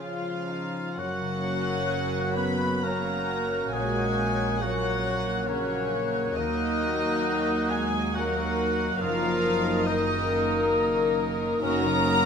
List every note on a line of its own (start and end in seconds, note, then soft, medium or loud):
0.00 0.75 C#3 soft
0.00 1.02 C#3 soft
0.00 0.95 F3 soft
0.00 0.20 G#3 soft
0.00 0.47 F4 soft
0.00 0.51 F4 soft
0.00 0.80 F4 soft
0.00 1.00 F4 soft
0.00 1.02 G#4 soft
0.00 0.45 C#5 soft
0.00 1.89 C#5 soft
0.00 0.95 F5 soft
0.22 0.72 G#3 soft
0.48 0.99 D#4 soft
0.48 1.02 F4 soft
0.74 1.02 G#3 soft
0.96 3.70 F#1 soft
0.96 3.77 F#2 soft
0.96 3.70 F#2 soft
0.96 2.37 F#3 medium
0.96 2.80 F#3 soft
0.96 2.80 A#3 soft
0.96 2.81 A#3 soft
0.96 2.81 C#4 soft
0.96 2.39 F#4 medium
0.96 2.81 F#4 soft
0.96 2.81 C#5 soft
0.96 2.38 F#5 medium
0.96 2.79 F#6 soft
1.21 3.78 C#3 soft
1.44 3.50 F#4 soft
1.68 3.28 A#4 soft
1.90 4.60 C#5 soft
2.14 3.05 F#5 soft
2.35 2.83 B3 medium
2.35 2.84 B4 medium
2.35 2.82 A#5 soft
2.35 2.83 B5 medium
2.60 5.25 C#6 soft
2.83 3.71 F#3 soft
2.83 3.72 A#3 medium
2.83 3.72 A#3 soft
2.83 3.74 A#3 soft
2.83 3.73 C#4 soft
2.83 3.73 F#4 soft
2.83 3.74 A#4 soft
2.83 3.73 C#5 soft
2.83 3.74 A#5 medium
2.83 5.03 A#5 soft
2.83 3.72 F#6 soft
3.06 4.82 F#5 soft
3.29 4.39 A#4 soft
3.52 4.17 F#4 soft
3.73 6.33 A#1 medium
3.73 6.41 A#2 soft
3.73 6.33 A#2 soft
3.73 4.59 F#3 soft
3.73 4.62 G#3 medium
3.73 4.59 A#3 soft
3.73 4.60 A#3 soft
3.73 4.61 C#4 soft
3.73 4.61 F#4 soft
3.73 4.63 G#4 medium
3.73 4.60 C#5 soft
3.73 4.59 G#5 medium
3.73 4.60 F#6 soft
3.96 6.59 A#3 soft
4.18 6.14 F#4 soft
4.40 5.92 A#4 soft
4.60 5.47 F#3 soft
4.60 5.47 F#3 medium
4.60 5.47 A#3 soft
4.60 5.48 C#4 soft
4.60 5.50 F#4 medium
4.60 5.47 C#5 soft
4.60 6.41 C#5 soft
4.60 5.48 F#5 medium
4.60 5.47 F#6 medium
4.64 5.49 F#4 soft
4.83 5.70 F#5 soft
5.04 5.47 A#5 soft
5.27 6.41 C#6 soft
5.48 6.37 C#3 medium
5.48 6.35 F#3 soft
5.48 6.35 A#3 soft
5.48 6.12 C#4 soft
5.48 6.36 C#4 soft
5.48 6.36 F#4 soft
5.48 6.36 C#5 medium
5.48 6.39 C#5 soft
5.48 7.69 A#5 soft
5.48 6.35 F#6 soft
5.71 7.47 F#5 soft
5.93 7.03 A#4 soft
6.15 6.81 F#4 soft
6.35 8.97 D#2 medium
6.35 8.97 D#2 soft
6.35 9.04 D#3 soft
6.35 7.69 D#3 medium
6.35 8.11 F#3 medium
6.35 7.86 A#3 medium
6.35 8.11 A#3 medium
6.35 8.15 D#4 medium
6.35 7.72 D#4 medium
6.35 8.11 F#4 soft
6.35 7.89 A#4 soft
6.35 7.70 D#5 medium
6.35 7.84 F#6 medium
6.60 10.50 A#3 soft
6.83 8.79 F#4 soft
7.04 8.57 A#4 soft
7.27 9.86 D#5 soft
7.48 8.35 F#5 soft
7.70 8.15 G#3 medium
7.70 8.16 G#4 medium
7.70 8.14 G#5 medium
7.70 8.14 A#5 soft
7.93 10.50 D#6 soft
8.13 8.99 F#3 medium
8.13 8.97 A#3 medium
8.13 8.99 A#3 medium
8.13 9.00 D#4 medium
8.13 9.00 F#4 medium
8.13 9.00 F#4 soft
8.13 8.97 A#4 soft
8.13 9.01 F#5 medium
8.13 10.28 A#5 soft
8.13 8.99 F#6 medium
8.18 9.03 F#3 medium
8.36 12.25 F#5 soft
8.59 9.64 A#4 soft
8.80 12.25 F#4 soft
8.99 11.58 F#1 medium
8.99 11.59 F#2 medium
8.99 11.61 F#2 medium
8.99 9.87 D#3 medium
8.99 9.88 F3 medium
8.99 9.84 A#3 medium
8.99 9.85 A#3 medium
8.99 9.85 D#4 medium
8.99 9.89 F4 medium
8.99 9.85 A#4 medium
8.99 9.84 F5 medium
8.99 9.85 D#6 medium
9.23 12.25 F#3 soft
9.44 11.39 D#4 soft
9.65 10.07 A#4 soft
9.85 11.60 D#3 medium
9.85 11.59 A#3 medium
9.85 11.60 A#3 medium
9.85 11.60 D#4 medium
9.85 10.74 D#4 medium
9.85 11.59 A#4 medium
9.85 10.73 D#5 medium
9.85 10.95 D#5 medium
9.85 11.59 D#6 medium
9.90 10.76 D#3 medium
10.08 11.17 A#4 medium
10.30 10.73 A#5 medium
10.51 12.25 D#6 soft
10.74 12.25 A#5 medium
10.96 12.25 D#5 medium
11.18 12.25 A#4 soft
11.40 12.07 D#4 soft
11.62 12.25 F#1 medium
11.62 12.25 F#2 medium
11.62 11.83 F#3 medium
11.62 12.25 A#3 medium
11.62 11.83 C#4 medium
11.62 12.25 C#4 medium
11.62 11.84 F#4 medium
11.62 12.25 A#4 medium
11.62 11.84 A#4 medium
11.62 12.25 A#5 loud
11.62 12.25 D#6 medium
11.84 12.25 C#3 soft
11.84 12.07 D#3 medium
11.84 12.07 A#3 medium
11.84 12.08 D#4 medium
11.84 12.08 C#5 medium
12.06 12.25 F#3 medium
12.06 12.25 C#4 medium
12.06 12.25 D#4 medium
12.06 12.25 F#4 medium
12.06 12.25 A#4 medium